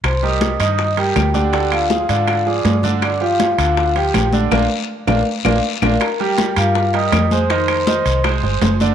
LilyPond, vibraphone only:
\new Staff \with { instrumentName = "Vibraphone" } { \time 4/4 \key c \minor \tempo 4 = 161 <c'' c'''>8 <ees'' ees'''>4 <ees'' ees'''>4 <g' g''>4 <g' g''>8~ | <g' g''>8 <f' f''>4 <f' f''>4 <d'' d'''>4 r8 | <d'' d'''>8 <f' f''>4 <f' f''>4 <g' g''>4 r8 | <bes' d'' f''>8 r4 <bes' d'' f''>8 r8 <bes' d'' f''>8 r8 <bes' d'' f''>8 |
<bes' bes''>8 <g' g''>4 <f' f''>4 <ees'' ees'''>4 <c'' c'''>8 | <c'' c'''>8 <c'' c'''>4. r2 | }